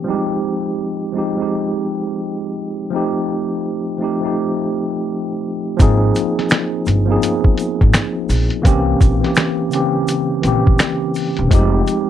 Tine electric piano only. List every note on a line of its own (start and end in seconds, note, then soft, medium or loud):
0.04 0.84 F3 loud
0.04 0.15 G3 medium
0.04 0.85 C4 medium
0.09 0.88 G#3 loud
0.09 0.86 D#4 loud
0.09 0.87 G4 loud
1.13 1.30 F3 medium
1.13 1.31 G#3 medium
1.13 1.31 C4 medium
1.17 1.32 D#4 medium
1.17 1.33 G4 medium
1.37 2.38 F3 medium
1.37 2.38 G#3 medium
1.37 2.39 C4 medium
1.41 2.40 D#4 medium
1.41 2.40 G4 medium
2.90 3.70 F3 loud
2.90 3.70 A3 medium
2.90 3.71 C4 medium
2.95 3.72 D#4 medium
2.95 3.73 G4 loud
3.98 4.16 F3 medium
3.98 4.16 A3 medium
3.98 4.17 C4 medium
4.02 4.18 D#4 medium
4.02 4.19 G4 medium
4.20 5.22 F3 medium
4.20 5.23 A3 medium
4.20 5.24 C4 medium
4.25 5.25 D#4 medium
4.25 5.25 G4 medium
5.77 6.72 F3 loud
5.77 6.73 A#3 loud
5.77 6.73 C4 loud
5.81 6.74 D#4 loud
5.81 6.75 G#4 loud
7.06 8.08 F3 medium
7.06 8.09 A#3 medium
7.06 7.14 B3 medium
7.10 8.10 D#4 medium
7.10 8.11 G#4 loud
7.15 8.13 C4 medium
8.62 9.02 E3 loud
8.62 9.03 A#3 loud
8.62 9.04 C4 loud
8.67 9.05 C#4 loud
8.67 9.05 G4 loud
9.20 9.59 E3 medium
9.20 9.60 A#3 medium
9.20 9.61 C4 medium
9.25 9.62 C#4 medium
9.25 9.62 G4 medium
9.70 9.79 C#3 medium
9.70 10.27 A#3 medium
9.70 10.27 C4 medium
9.74 10.29 E3 medium
9.74 10.28 C#4 medium
9.74 10.29 G4 loud
10.42 11.20 E3 medium
10.42 11.21 A#3 medium
10.42 11.22 C4 medium
10.46 11.23 C#4 medium
10.46 11.23 G4 loud
11.49 12.10 F3 loud
11.49 12.10 G#3 loud
11.49 12.10 C4 loud
11.53 12.10 D#4 loud
11.53 12.10 G4 loud